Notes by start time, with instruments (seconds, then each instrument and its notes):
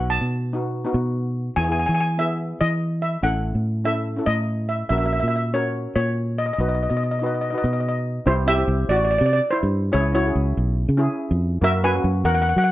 Already playing: fingered electric bass B1, steel pan B3 D#4 F#4 F#5
0.10 steel pan A5
0.21 fingered electric bass B2
0.53 steel pan B3 D#4 F#4
0.84 steel pan B3 D#4 F#4
0.94 fingered electric bass B2
1.56 fingered electric bass E2, steel pan B3 E4 G#4 G#5
1.64 steel pan B3 G#5
1.69 steel pan E4 G#4 G#5
1.79 steel pan G#5
1.86 fingered electric bass E3, steel pan G#5
1.94 steel pan G#5
2.00 steel pan G#5
2.18 steel pan B3 E4 G#4 E5
2.61 fingered electric bass E3, steel pan D#5
3.02 steel pan E5
3.23 fingered electric bass A1, steel pan C#4 E4 A4 F#5
3.55 fingered electric bass A2
3.85 steel pan C#4 E4 A4 E5
4.16 steel pan C#4 E4 A4
4.26 fingered electric bass A2, steel pan D#5
4.69 steel pan E5
4.89 fingered electric bass A#1, steel pan C#4 F#4 A#4 E5
4.98 steel pan C#4 E5
5.02 steel pan F#4 A#4 E5
5.13 steel pan E5
5.20 fingered electric bass A#2, steel pan E5
5.28 steel pan E5
5.36 steel pan E5
5.53 steel pan C#4 F#4 A#4 C#5
5.96 fingered electric bass A#2, steel pan C#5
6.38 steel pan D#5
6.46 steel pan D#5
6.53 steel pan D#5
6.58 fingered electric bass B1, steel pan D#4 F#4 B4 D#5
6.69 steel pan D#5
6.75 steel pan D#5
6.83 steel pan D#5
6.90 fingered electric bass B2, steel pan D#5
6.97 steel pan D#5
7.03 steel pan D#5
7.11 steel pan D#5
7.19 steel pan D#4 F#4 D#5
7.23 steel pan B4 D#5
7.35 steel pan D#5
7.41 steel pan D#5
7.50 steel pan D#4 F#4 D#5
7.55 steel pan B4 D#5
7.64 fingered electric bass B2, steel pan D#5
7.73 steel pan D#5
7.80 steel pan D#5
7.89 steel pan D#5
8.26 fingered electric bass C2, steel pan C4 E4 G4 C5
8.46 steel pan C4 E4 G4 E5
8.57 steel pan C4 E4 G4
8.68 fingered electric bass C2
8.89 fingered electric bass A1, steel pan F#4 D5
8.96 steel pan D5
9.05 steel pan D5
9.11 steel pan D5
9.18 fingered electric bass C3, steel pan D5
9.26 steel pan D5
9.33 steel pan D5
9.51 steel pan E4 C5
9.63 fingered electric bass G2
9.92 fingered electric bass C#2, steel pan C#4 E4 G#4 C#5
10.13 steel pan C#4 E4 F#4 C#5
10.25 steel pan C#4 E4 G#4
10.35 fingered electric bass C#2
10.57 fingered electric bass B1
10.89 fingered electric bass C#3
10.97 steel pan C#4 E4 G#4
11.31 fingered electric bass F2
11.61 fingered electric bass F#2, steel pan A#3 C#4 F#4 A#4 E5
11.83 steel pan A#3 C#4 F#4 B4 G#5
11.94 steel pan F#3 C#4 F#4
12.04 fingered electric bass F#2
12.24 fingered electric bass E2, steel pan A#4 F#5
12.34 steel pan F#5
12.42 steel pan F#5
12.49 steel pan F#5
12.56 fingered electric bass F#3, steel pan F#5
12.64 steel pan F#5